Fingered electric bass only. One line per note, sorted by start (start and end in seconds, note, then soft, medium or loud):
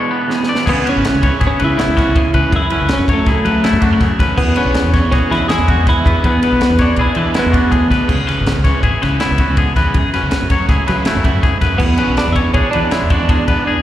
0.68 0.82 C#2 loud
0.96 1.03 G#1 medium
1.14 1.29 C#2 medium
1.41 1.49 G#1 loud
1.62 1.76 C#3 medium
1.88 2.03 C#2 loud
2.06 2.21 C#2 medium
2.34 2.42 C#2 medium
2.52 2.67 F#2 loud
2.81 2.88 C#2 medium
2.99 3.14 F#2 medium
3.26 3.34 C#2 medium
3.45 3.60 F#3 medium
3.73 3.88 F#2 loud
3.91 4.06 F#2 medium
4.19 4.27 D#2 loud
4.38 4.53 E2 loud
4.65 4.73 B1 medium
4.84 4.99 E2 medium
5.13 5.20 B1 medium
5.31 5.46 E3 medium
5.58 5.74 E2 loud
5.77 5.92 E2 medium
6.06 6.13 E2 medium
6.24 6.39 E2 loud
6.52 6.60 B1 medium
6.70 6.85 E2 medium
6.97 7.05 B1 loud
7.16 7.31 E3 medium
7.46 7.60 E2 loud
7.64 7.78 E2 medium
7.90 7.98 D2 medium
8.09 8.24 C#2 loud
8.39 8.46 G#1 medium
8.58 8.72 C#2 medium
8.83 8.91 G#1 medium
9.03 9.18 C#3 loud
9.31 9.46 C#2 loud
9.50 9.64 C#2 medium
9.77 9.84 E2 medium
9.94 10.10 F#2 loud
10.23 10.31 C#2 medium
10.43 10.57 F#2 medium
10.68 10.76 C#2 medium
10.89 11.04 F#3 medium
11.16 11.31 F#2 loud
11.35 11.50 F#2 medium
11.62 11.70 F#2 medium
11.80 11.95 E2 loud
12.09 12.16 B1 medium
12.28 12.42 E2 medium
12.54 12.62 B1 medium
12.76 12.90 E3 loud
13.03 13.17 E2 loud
13.21 13.36 E2 medium
13.48 13.56 E2 medium